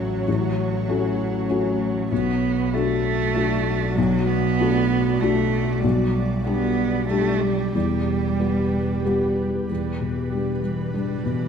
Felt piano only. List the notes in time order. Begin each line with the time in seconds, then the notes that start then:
Already playing: A1 A3 C#4 F#4
0.28 A1
0.89 A3 C#4 F#4
1.50 A3 C#4 F#4
2.12 B1
2.74 A3 D4 F#4
3.35 A3 D4 F#4
3.98 B1
4.60 A3 D4 F#4
5.22 A3 D4 F#4
5.84 B1
6.46 G3 D4 G4
7.10 G3 D4 G4
7.75 E2
8.40 G3 B3 G4
9.05 G3 B3 G4
9.70 E2
10.01 B2
10.32 G3 D4 G4
10.63 G3
10.94 G3 D4 G4
11.26 B2